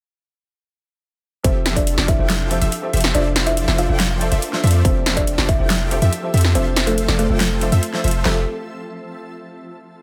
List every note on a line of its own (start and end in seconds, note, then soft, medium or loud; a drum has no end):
1.43 1.96 F1 medium
1.43 1.73 F3 medium
1.43 1.95 F3 medium
1.43 3.13 F3 medium
1.43 1.74 C4 medium
1.43 1.65 C4 medium
1.43 1.95 F4 medium
1.43 1.74 G4 medium
1.43 1.95 G4 medium
1.43 3.13 G4 medium
1.43 1.95 A4 medium
1.43 3.13 A4 medium
1.43 1.74 A4 medium
1.43 1.65 C5 loud
1.43 1.95 E5 medium
1.43 3.13 E5 medium
1.43 1.74 E5 loud
1.43 kick loud
1.43 closed hi-hat medium
1.66 snare medium
1.66 closed hi-hat medium
1.75 1.82 F3 medium
1.75 1.82 C4 medium
1.75 1.97 D4 medium
1.75 1.82 G4 medium
1.75 1.82 A4 medium
1.75 1.97 D5 loud
1.75 1.83 E5 medium
1.75 kick medium
1.75 closed hi-hat medium
1.87 closed hi-hat medium
1.98 2.17 F1 medium
1.98 2.17 F3 medium
1.98 2.17 F4 medium
1.98 2.16 G4 medium
1.98 2.17 A4 medium
1.98 2.16 D5 medium
1.98 snare medium
2.08 3.06 E4 medium
2.08 3.06 E5 medium
2.08 kick loud
2.08 closed hi-hat medium
2.18 2.59 F1 loud
2.18 2.24 F3 medium
2.18 2.59 F3 loud
2.18 2.24 C4 medium
2.18 2.59 F4 medium
2.18 2.25 G4 medium
2.18 2.59 G4 medium
2.18 2.59 A4 medium
2.18 2.25 A4 medium
2.18 2.25 E5 medium
2.18 2.59 G5 loud
2.30 snare loud
2.30 closed hi-hat medium
2.50 2.56 F3 loud
2.50 2.56 C4 medium
2.50 2.57 G4 medium
2.50 2.57 A4 medium
2.50 2.57 E5 loud
2.50 closed hi-hat medium
2.62 2.68 F1 loud
2.62 2.71 F3 medium
2.62 2.71 F4 medium
2.62 2.71 G4 medium
2.62 2.71 A4 medium
2.62 2.71 E5 loud
2.62 closed hi-hat medium
2.72 closed hi-hat medium
2.82 2.88 F3 medium
2.82 2.88 C4 medium
2.82 2.88 G4 medium
2.82 2.89 A4 medium
2.82 2.89 E5 medium
2.93 3.13 F1 loud
2.93 3.12 F3 medium
2.93 3.12 F4 medium
2.93 3.12 G4 medium
2.93 3.12 A4 medium
2.93 3.12 E5 medium
2.93 closed hi-hat medium
2.97 closed hi-hat medium
3.01 snare medium
3.01 closed hi-hat medium
3.14 3.66 F1 medium
3.14 3.44 F3 medium
3.14 3.65 F3 medium
3.14 4.83 A3 medium
3.14 4.83 A#3 medium
3.14 3.35 D4 medium
3.14 4.83 D4 medium
3.14 3.44 F4 medium
3.14 3.65 F4 medium
3.14 3.44 A4 medium
3.14 3.65 A4 medium
3.14 3.65 C5 medium
3.14 3.44 C5 medium
3.14 3.35 D5 medium
3.14 3.65 D5 medium
3.14 3.44 D5 medium
3.14 3.65 E5 medium
3.14 3.65 E5 loud
3.14 3.45 E5 medium
3.14 closed hi-hat medium
3.36 snare medium
3.36 closed hi-hat medium
3.46 3.52 F3 medium
3.46 3.67 E4 medium
3.46 3.52 F4 medium
3.46 3.52 A4 medium
3.46 3.52 C5 medium
3.46 3.53 D5 medium
3.46 3.67 E5 medium
3.46 3.53 E5 medium
3.46 closed hi-hat medium
3.57 closed hi-hat medium
3.68 3.87 F1 loud
3.68 3.87 F3 medium
3.68 3.87 F4 medium
3.68 3.87 A4 medium
3.68 3.87 C5 medium
3.68 3.87 D5 medium
3.68 3.87 E5 medium
3.68 snare medium
3.78 4.76 F4 medium
3.78 4.76 F5 loud
3.78 closed hi-hat medium
3.88 4.30 F1 medium
3.88 3.94 F3 medium
3.88 4.29 F3 loud
3.88 3.95 F4 medium
3.88 4.29 F4 medium
3.88 3.95 A4 medium
3.88 4.29 A4 medium
3.88 4.29 C5 medium
3.88 3.95 C5 medium
3.88 4.29 D5 medium
3.88 3.95 D5 medium
3.88 3.95 E5 medium
3.88 4.29 G5 loud
4.00 snare loud
4.00 closed hi-hat medium
4.20 4.26 F3 loud
4.20 4.26 F4 medium
4.20 4.27 A4 medium
4.20 4.27 C5 medium
4.20 4.27 D5 medium
4.20 4.27 E5 loud
4.20 closed hi-hat medium
4.32 4.39 F1 loud
4.32 4.41 F3 medium
4.32 4.41 F4 medium
4.32 4.41 A4 medium
4.32 4.41 C5 medium
4.32 4.41 D5 medium
4.32 4.41 E5 loud
4.32 closed hi-hat medium
4.42 closed hi-hat medium
4.52 4.58 F3 medium
4.52 4.58 F4 medium
4.52 4.59 A4 medium
4.52 4.59 C5 medium
4.52 4.59 D5 medium
4.52 4.59 E5 loud
4.52 snare soft
4.64 4.83 F2 loud
4.64 4.82 F3 medium
4.64 4.82 F4 medium
4.64 4.82 A4 medium
4.64 4.82 C5 medium
4.64 4.82 D5 medium
4.64 4.82 E5 medium
4.64 closed hi-hat soft
4.67 closed hi-hat medium
4.71 closed hi-hat medium
4.84 5.36 F1 loud
4.84 5.14 F3 medium
4.84 8.22 F3 medium
4.84 5.14 C4 medium
4.84 5.05 C4 medium
4.84 5.14 G4 medium
4.84 6.53 G4 medium
4.84 8.22 A4 medium
4.84 5.15 A4 medium
4.84 5.05 C5 medium
4.84 5.36 E5 medium
4.84 6.53 E5 medium
4.84 5.15 E5 loud
4.84 kick loud
4.84 closed hi-hat medium
5.06 snare medium
5.06 closed hi-hat medium
5.16 5.22 F3 medium
5.16 5.22 C4 medium
5.16 5.37 D4 medium
5.16 5.22 G4 medium
5.16 5.23 A4 medium
5.16 5.37 D5 loud
5.16 5.23 E5 medium
5.16 kick medium
5.16 closed hi-hat medium
5.27 closed hi-hat medium
5.38 5.57 F1 loud
5.38 5.57 F3 medium
5.38 5.57 F4 medium
5.38 5.57 G4 medium
5.38 5.57 A4 medium
5.38 5.57 D5 medium
5.38 snare medium
5.49 6.47 E4 medium
5.49 6.47 E5 loud
5.49 kick loud
5.49 closed hi-hat medium
5.59 6.00 F1 loud
5.59 5.65 F3 medium
5.59 5.99 F3 loud
5.59 5.65 C4 medium
5.59 5.99 F4 medium
5.59 5.99 G4 medium
5.59 5.65 G4 medium
5.59 5.99 A4 medium
5.59 5.65 A4 medium
5.59 5.66 E5 medium
5.59 5.99 G5 loud
5.70 snare loud
5.70 closed hi-hat medium
5.90 5.96 F3 loud
5.90 5.97 C4 medium
5.90 5.97 G4 medium
5.90 5.97 A4 medium
5.90 5.98 E5 loud
5.90 closed hi-hat medium
6.02 6.09 F2 loud
6.02 6.11 F3 medium
6.02 6.11 F4 medium
6.02 6.11 G4 medium
6.02 6.11 A4 medium
6.02 6.11 E5 loud
6.02 closed hi-hat medium
6.13 closed hi-hat medium
6.22 6.28 F3 medium
6.22 6.29 C4 medium
6.22 6.29 G4 medium
6.22 6.29 A4 medium
6.22 6.29 E5 medium
6.34 6.57 F2 medium
6.34 6.53 F3 medium
6.34 6.53 F4 medium
6.34 6.53 G4 medium
6.34 6.53 A4 medium
6.34 6.53 E5 medium
6.34 closed hi-hat soft
6.37 closed hi-hat medium
6.41 snare medium
6.41 closed hi-hat medium
6.54 7.06 F1 loud
6.54 6.84 F3 medium
6.54 7.06 F3 medium
6.54 6.75 C4 medium
6.54 8.24 C4 medium
6.54 6.84 D4 medium
6.54 7.06 F4 medium
6.54 7.06 A4 medium
6.54 6.85 A4 medium
6.54 7.06 C5 medium
6.54 6.75 C5 loud
6.54 6.85 C5 medium
6.54 7.06 E5 loud
6.54 7.06 E5 medium
6.54 8.24 E5 medium
6.54 6.85 E5 loud
6.54 closed hi-hat medium
6.76 snare medium
6.76 closed hi-hat medium
6.86 6.92 F3 medium
6.86 7.07 A3 medium
6.86 6.92 D4 medium
6.86 7.07 A4 loud
6.86 6.93 A4 medium
6.86 6.93 C5 medium
6.86 6.93 E5 medium
6.86 closed hi-hat medium
6.98 closed hi-hat medium
7.08 7.28 F1 loud
7.08 7.27 F3 medium
7.08 7.27 F4 medium
7.08 7.27 A4 medium
7.08 7.27 C5 medium
7.08 7.27 D5 medium
7.08 snare medium
7.19 8.17 A3 medium
7.19 8.17 A4 loud
7.19 closed hi-hat medium
7.29 7.70 F1 medium
7.29 7.35 F3 medium
7.29 7.70 F3 medium
7.29 7.35 D4 medium
7.29 7.70 F4 medium
7.29 7.35 A4 medium
7.29 7.70 A4 medium
7.29 7.70 C5 medium
7.29 7.36 C5 medium
7.29 7.36 E5 medium
7.29 7.70 G5 loud
7.40 snare loud
7.40 closed hi-hat medium
7.61 7.67 F3 loud
7.61 7.67 D4 medium
7.61 7.67 A4 medium
7.61 7.67 C5 medium
7.61 7.68 E5 loud
7.61 closed hi-hat medium
7.72 7.79 F2 loud
7.72 7.81 F3 medium
7.72 7.81 F4 medium
7.72 7.81 A4 medium
7.72 7.81 C5 medium
7.72 7.81 E5 loud
7.72 closed hi-hat medium
7.83 closed hi-hat medium
7.93 7.99 F3 medium
7.93 7.99 D4 medium
7.93 7.99 A4 medium
7.93 7.99 C5 medium
7.93 8.00 E5 medium
7.93 snare soft
8.04 8.23 F1 medium
8.04 8.23 F3 medium
8.04 8.23 F4 medium
8.04 8.23 A4 medium
8.04 8.23 C5 medium
8.04 8.23 E5 medium
8.04 closed hi-hat soft
8.08 closed hi-hat medium
8.11 closed hi-hat medium
8.23 8.45 F1 medium
8.23 8.40 F3 medium
8.23 8.41 F3 medium
8.23 8.40 C4 medium
8.23 8.41 F4 medium
8.23 8.41 G4 medium
8.23 8.41 A4 medium
8.23 8.41 E5 loud
8.23 8.41 E5 medium
8.23 snare loud
8.23 clap medium
8.27 8.42 A4 medium
8.27 8.43 E5 medium